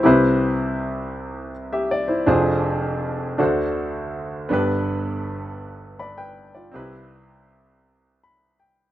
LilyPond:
<<
  \new Staff \with { instrumentName = "Grand piano" } { \time 6/8 \key c \major \tempo 4. = 54 << { r2 r16 <g' e''>16 d''16 <e' c''>16~ | <e' c''>16 r2 r8. | r2 <d'' b''>16 <b' g''>8 <f' d''>16~ | <f' d''>16 r4. r16 b''8 g''8 | } \\ { <e' g' b' c''>2 r4 | <d' f' aes' c''>4. <d' fis' a' c''>4. | <b d' g' b'>2. | <c' ees' e' g' b'>2. | } >> }
  \new Staff \with { instrumentName = "Grand piano" } { \clef bass \time 6/8 \key c \major <c, c>2. | <f,, f,>4. <d, d>4. | <g,, g,>2. | <c, c>2. | }
>>